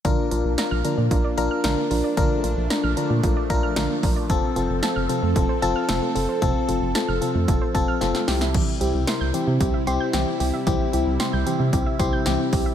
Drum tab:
CC |----------------|----------------|----------------|----------------|
HH |x-x-x-x-x-x-x-o-|x-x-x-x-x-x-x-o-|x-x-x-x-x-x-x-o-|x-x-x-x-x-x-x-o-|
SD |----o-------o---|----o-------o---|----o-------o---|----o-------oooo|
BD |o-------o-------|o-------o-o---o-|o-------o-------|o-------o-o-----|

CC |x---------------|----------------|
HH |--x-x-x-x-x-x-o-|x-x-x-x-x-x-x-o-|
SD |----o-------o---|----o-------o---|
BD |o-------o-------|o-------o-o---o-|